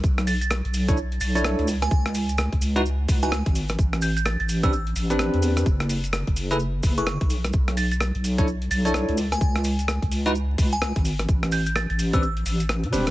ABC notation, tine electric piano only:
X:1
M:4/4
L:1/16
Q:"Swing 16ths" 1/4=128
K:C#phr
V:1 name="Tine electric piano"
z6 z [DEAc] z3 [DEAc]3 z2 | z6 z [^DEFB] z3 [DEFB] z4 | z6 z [=CD=GB] z3 [CDGB]4- [CDGB] | z6 z [EGAB] z3 [EGAB] z4 |
z6 z [DEAc] z3 [DEAc]3 z2 | z6 z [^DEFB] z8 | z6 z [=CD=GB] z6 [CDGB] z |]